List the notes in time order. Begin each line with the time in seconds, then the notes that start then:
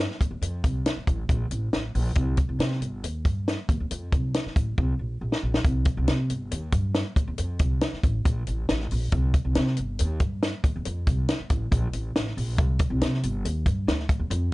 0.11 snare
0.21 D#2, kick, closed hi-hat
0.31 D#2
0.42 F2, closed hi-hat
0.64 C2, kick, closed hi-hat
0.86 snare, closed hi-hat
0.96 muted upright bass stroke
1.07 A1, kick, closed hi-hat
1.29 A#1, kick, closed hi-hat
1.51 A1, closed hi-hat
1.73 A1, snare, closed hi-hat
1.95 A#1, open hi-hat
2.15 C2, kick, closed hi-hat
2.37 kick, closed hi-hat
2.49 C2
2.59 C3, snare, closed hi-hat
2.72 snare
2.81 G1, closed hi-hat
3.03 D#2, closed hi-hat
3.25 G2, kick, closed hi-hat
3.48 snare, closed hi-hat
3.69 D#2, kick, closed hi-hat
3.80 D#2
3.91 F2, closed hi-hat
4.12 C2, kick, closed hi-hat
4.34 snare, closed hi-hat
4.46 muted upright bass stroke, snare
4.56 A1, kick, closed hi-hat
4.78 C2, kick
4.99 A#1
5.21 A#1
5.32 snare
5.43 A#1
5.54 snare
5.64 C2, kick, closed hi-hat
5.85 kick, closed hi-hat
5.97 C2
6.08 C3, snare, closed hi-hat
6.30 G1, closed hi-hat
6.51 D#2, closed hi-hat
6.72 G2, kick, closed hi-hat
6.95 snare, closed hi-hat
7.16 D#2, kick, closed hi-hat
7.27 D#2
7.38 F2, closed hi-hat
7.59 C2, kick, closed hi-hat
7.81 snare, closed hi-hat
7.93 muted upright bass stroke, snare
8.03 A1, kick, closed hi-hat
8.25 A#1, kick, closed hi-hat
8.47 A1, closed hi-hat
8.69 A1, snare, closed hi-hat
8.80 snare
8.91 A#1, open hi-hat
9.12 C2, kick, closed hi-hat
9.34 kick, closed hi-hat
9.45 C2
9.55 C3, snare, closed hi-hat
9.67 snare
9.77 G1, closed hi-hat
9.99 D#2, closed hi-hat
10.20 G2, kick, closed hi-hat
10.43 snare, closed hi-hat
10.64 D#2, kick, closed hi-hat
10.76 D#2
10.85 F2, closed hi-hat
11.07 C2, kick, closed hi-hat
11.29 snare, closed hi-hat
11.40 muted upright bass stroke
11.50 A1, kick, closed hi-hat
11.71 A#1, kick, closed hi-hat
11.93 A1, closed hi-hat
12.16 A1, snare, closed hi-hat
12.27 snare
12.37 A#1, open hi-hat
12.58 C2, kick, closed hi-hat
12.79 kick, closed hi-hat
12.90 C2
13.01 C3, snare, closed hi-hat
13.14 snare
13.23 G1, closed hi-hat
13.45 D#2, closed hi-hat
13.66 G2, kick, closed hi-hat
13.87 D2, snare, closed hi-hat
13.99 snare
14.09 kick, closed hi-hat
14.19 D#2
14.30 F2, closed hi-hat